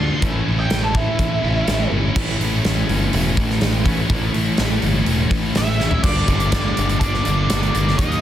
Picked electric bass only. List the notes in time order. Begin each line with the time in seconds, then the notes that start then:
0.23 A1
0.47 A1
0.72 A1
1.20 A1
1.44 A1
1.68 A1
1.92 G1
2.17 A1
2.39 A1
2.65 A1
2.89 G1
3.13 E1
3.37 A1
3.62 A1
4.10 A1
4.34 A1
4.59 A1
4.83 G1
5.06 E1
5.31 A1
5.57 A1
6.04 G1
6.28 G1
6.52 G1
6.78 G1
7.01 G1
7.27 G1
7.52 G1
7.75 G1
7.99 D#2